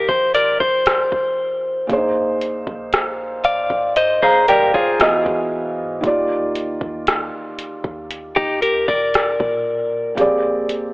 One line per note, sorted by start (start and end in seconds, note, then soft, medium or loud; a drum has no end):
0.00 1.84 F3 medium
0.00 1.85 C4 medium
0.00 1.86 D#4 medium
0.00 1.87 G4 medium
0.00 1.87 A#4 medium
0.09 0.59 D#1 medium
0.09 0.33 C5 medium
0.09 kick medium
0.35 0.59 A#4 medium
0.35 0.59 D5 medium
0.35 closed hi-hat medium
0.60 1.10 F1 medium
0.60 1.86 C5 medium
0.60 kick loud
0.86 cross-stick loud
0.86 closed hi-hat medium
1.12 1.87 F1 medium
1.12 kick medium
1.87 2.64 A#1 loud
1.87 4.95 A#2 medium
1.87 4.96 A#3 medium
1.87 1.96 D4 soft
1.87 kick loud
1.87 closed hi-hat medium
1.91 4.97 G#4 medium
1.91 3.44 C5 medium
1.97 5.00 D#4 medium
2.41 closed hi-hat medium
2.67 3.67 A#1 medium
2.67 kick medium
2.93 cross-stick medium
2.93 closed hi-hat medium
3.44 3.94 D5 medium
3.44 3.94 F5 medium
3.44 closed hi-hat medium
3.70 4.20 A#1 loud
3.70 kick medium
3.96 4.21 C5 medium
3.96 4.21 D#5 medium
3.96 closed hi-hat medium
4.22 4.73 A#1 medium
4.22 4.47 G#4 medium
4.22 4.47 C5 medium
4.22 4.48 F5 medium
4.22 4.47 A#5 medium
4.22 kick medium
4.48 4.73 G4 medium
4.48 4.73 A#4 medium
4.48 4.73 D5 medium
4.48 4.73 G5 medium
4.48 closed hi-hat medium
4.74 5.24 E1 loud
4.74 5.24 F4 medium
4.74 5.23 G#4 medium
4.74 5.24 C5 medium
4.74 5.24 F5 medium
4.74 kick loud
4.99 6.03 E3 medium
4.99 6.04 B3 medium
4.99 6.04 F#4 medium
4.99 6.04 G#4 medium
4.99 6.05 D#5 medium
4.99 cross-stick loud
4.99 closed hi-hat medium
5.26 5.80 E1 loud
5.26 kick medium
5.78 6.03 G#2 medium
6.01 6.78 D#2 loud
6.01 10.12 D#3 medium
6.01 10.13 A#3 medium
6.01 10.14 F4 medium
6.01 kick loud
6.01 closed hi-hat medium
6.05 10.14 G4 medium
6.05 10.15 D5 medium
6.55 closed hi-hat medium
6.81 7.31 D#2 loud
6.81 kick medium
7.07 cross-stick loud
7.07 closed hi-hat medium
7.59 closed hi-hat medium
7.84 8.34 D#2 loud
7.84 kick medium
8.11 closed hi-hat medium
8.36 8.86 D#2 medium
8.36 8.61 D#4 medium
8.36 8.61 G4 medium
8.36 kick medium
8.62 8.87 G4 medium
8.62 8.87 A#4 medium
8.62 closed hi-hat medium
8.88 9.38 D#2 medium
8.88 10.14 A#4 medium
8.88 10.13 D5 medium
8.88 kick loud
9.14 cross-stick loud
9.14 closed hi-hat medium
9.40 10.15 A#2 medium
9.40 kick medium
10.15 10.92 A#1 loud
10.15 10.94 A#2 medium
10.15 10.94 A#3 medium
10.15 10.94 C4 medium
10.15 10.94 G4 medium
10.15 kick loud
10.15 closed hi-hat medium
10.20 10.94 G#4 medium
10.20 10.94 D5 medium
10.69 closed hi-hat medium